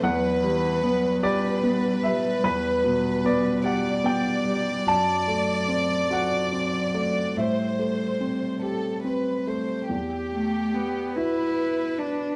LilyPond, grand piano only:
<<
  \new Staff \with { instrumentName = "Grand piano" } { \time 6/8 \key e \minor \tempo 4. = 49 fis''4. d''4 e''8 | b'4 d''8 fis''8 g''4 | a''4. fis''4 d''8 | e''2~ e''8 r8 |
r2. | }
  \new Staff \with { instrumentName = "Grand piano" } { \time 6/8 \key e \minor e,8 g8 b8 g'8 b8 g8 | e,8 b,8 b8 g'8 b8 g8 | fis,8 a8 c'8 fis'8 c'8 a8 | a,8 a8 c'8 g'8 c'8 a8 |
e,4. <e' fis'>4. | }
>>